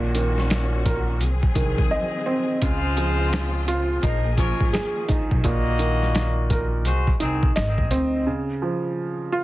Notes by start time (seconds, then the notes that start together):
Already playing: A#1 A#2 D#3 C#4 F#4
0.14 D#3, closed hi-hat, shaker
0.38 snare
0.50 snare, closed hi-hat, shaker
0.86 A#4, kick, closed hi-hat, shaker
1.21 C2 F#3 C4 G#4, closed hi-hat, shaker
1.43 kick
1.55 C2 D#3, kick, closed hi-hat, shaker
1.78 kick, shaker
1.91 D#5
2.26 C4
2.62 C#2 C#3 G#3 C4 F4 C5, kick, closed hi-hat, shaker
2.97 F3, closed hi-hat, shaker
3.32 snare, closed hi-hat, shaker
3.68 F4, closed hi-hat, shaker
4.03 A#1 D#3 F3 A#3 D#4 G#4 A#4, kick, closed hi-hat, shaker
4.38 F3 C#4 A#4 C#5, kick, closed hi-hat, shaker
4.60 G#1, kick, shaker
4.73 G#4, snare, closed hi-hat, shaker
5.08 D#4, kick, closed hi-hat, shaker
5.31 B1, kick
5.44 A#1 A#2 A#3 F#4 D#5, kick, closed hi-hat
5.79 D#3, closed hi-hat
6.03 snare
6.15 snare, closed hi-hat
6.50 A#4, kick, closed hi-hat
6.85 C2 G#3 F#4 C5, closed hi-hat
7.07 kick
7.20 C2 D#3 C4 D#4 G#4, closed hi-hat
7.43 kick
7.56 G#1 D#5, snare, closed hi-hat
7.78 kick
7.91 D2 C4, closed hi-hat
8.27 C#3
8.62 F3
9.32 F4